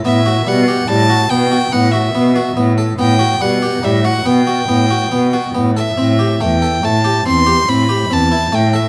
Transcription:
<<
  \new Staff \with { instrumentName = "Violin" } { \time 7/4 \key e \minor \tempo 4 = 142 e''4 fis''4 a''4 g''4 fis''8 e''4. r4 | g''4 fis''4 e''8 fis''8 g''2. r8 e''8~ | e''4 g''4 a''4 c'''4 b''4 a''4 g''8 e''8 | }
  \new Staff \with { instrumentName = "Harpsichord" } { \time 7/4 \key e \minor b8 fis'8 g8 g'8 g8 fis'8 b8 fis'8 b8 fis'8 b8 fis'8 b8 a'8 | b8 fis'8 g8 g'8 g8 fis'8 b8 fis'8 b8 fis'8 b8 fis'8 b8 a'8 | c'8 g'8 a8 a'8 a8 g'8 c'8 g'8 c'8 g'8 c'8 e'8 a8 a'8 | }
  \new Staff \with { instrumentName = "Cello" } { \clef bass \time 7/4 \key e \minor a,4 b,4 a,4 b,4 a,4 b,4 a,4 | a,4 b,4 a,4 b,4 a,4 b,4 a,4 | a,4 e,4 a,4 e,4 a,4 e,4 a,4 | }
>>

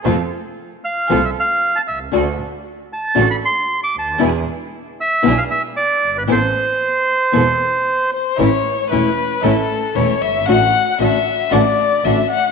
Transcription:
<<
  \new Staff \with { instrumentName = "Bandoneon" } { \time 4/4 \key a \minor \tempo 4 = 115 r4. f''8. e''16 f''8. a''16 e''8 | r4. a''8. b''16 c'''8. d'''16 a''8 | r4. e''8. f''16 e''8 d''8. b'16 | c''2.~ c''8 r8 |
\key a \major r1 | r1 | }
  \new Staff \with { instrumentName = "Violin" } { \time 4/4 \key a \minor r1 | r1 | r1 | r2. r8 c''8 |
\key a \major cis''4 b'4 a'4 cis''8 e''8 | fis''4 e''4 d''4 e''8 fis''8 | }
  \new Staff \with { instrumentName = "String section" } { \time 4/4 \key a \minor <c' f' a'>8 r4. <c' f' a'>8 r4. | <d' fis' a'>8 r4. <d' fis' a'>8 r4. | <d' e' gis'>8 r4. <d' e' gis'>8 r4. | <b c' a'>8 r4. <b c' a'>8 r4. |
\key a \major <a cis' e'>8 r8 <a cis' e'>8 r8 <a cis' e'>8 r8 <a cis' e'>8 r8 | <a d' fis'>8 r8 <a d' fis'>8 r8 <a d' fis'>8 r8 <a d' fis'>8 r8 | }
  \new Staff \with { instrumentName = "Nylon-string guitar" } { \time 4/4 \key a \minor <c f a c' f'>8 r4. <c f a c' f'>8 r4. | <d a d' fis'>8 r4. <d a d' fis'>8 r4. | <b, d gis b e'>8 r4. <b, d gis b e'>8 r4. | <e b c' e'>8 r4. <e b c' e'>8 r4. |
\key a \major <e a cis' e'>8 r8 <e a cis' e'>8 r8 <e a cis' e'>8 r8 <e a cis' e'>8 r8 | <d a d' fis'>8 r8 <d a d' fis'>8 r8 <d a d' fis'>8 r8 <d a d' fis'>8 r8 | }
  \new Staff \with { instrumentName = "Double bass" } { \clef bass \time 4/4 \key a \minor f,8 r4. c,8 r4 c,8 | d,8 r4. a,,8 r4 d,8 | e,8 r4. b,,8 r4 g,,8 | a,,8 r4. e,,8 r4. |
\key a \major a,,8 r8 e,,8 r8 a,,8 r8 e,,8 g,,8 | a,,8 r8 a,,8 r8 a,,8 r8 a,,8 r8 | }
>>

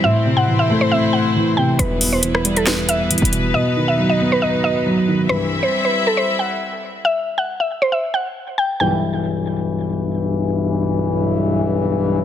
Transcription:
<<
  \new Staff \with { instrumentName = "Synth pluck" } { \time 4/4 \key e \minor \tempo 4 = 137 e''8. fis''8 e''8 c''16 e''8 fis''4 g''8 | b'8. c''8 b'8 a'16 b'8 e''4. | dis''8. e''8 dis''8 b'16 dis''8 dis''4. | b'8. c''8 b'8 a'16 c''8 fis''4. |
e''8. fis''8 e''8 c''16 e''8 fis''4 g''8 | g''2. r4 | r1 | }
  \new Staff \with { instrumentName = "String section" } { \time 4/4 \key e \minor << { <c' c''>1 | <b b'>1~ | <b b'>1 | <c' e''>1 |
r1 | r1 | r1 | } \\ { <a e'>1 | <g e'>1 | <fis dis'>1 | <g e'>1 |
r1 | r1 | r1 | } >> }
  \new Staff \with { instrumentName = "Grand piano" } { \clef bass \time 4/4 \key e \minor a,8 c8 e8 a8 c'4 e8 c8 | e,8 b,8 e8 g4. e8 b,8 | b,8 dis8 fis8 b8 b'4 fis8 dis8 | r1 |
r1 | r1 | r1 | }
  \new Staff \with { instrumentName = "Brass ensemble" } { \clef bass \time 4/4 \key e \minor r1 | <b,, g, e>8. r2. r16 | r1 | <c, g, e>8. r2. r16 |
r1 | <b,, g, e>1~ | <b,, g, e>1 | }
  \new Staff \with { instrumentName = "808-style bass" } { \clef bass \time 4/4 \key e \minor r1 | e,,2. r16 e,,8. | r1 | r1 |
r1 | r1 | r1 | }
  \new DrumStaff \with { instrumentName = "Drums" } \drummode { \time 4/4 r4 r4 r4 r4 | hh8 hho8 hh16 ss16 hh16 hh16 <hh sn>8 hh8 \tuplet 3/2 { hh16 hh16 hh16 hh16 r16 r16 } | r4 r4 r4 r4 | r4 r4 r4 r4 |
r4 r4 r4 r4 | r4 r4 r4 r4 | r4 r4 r4 r4 | }
>>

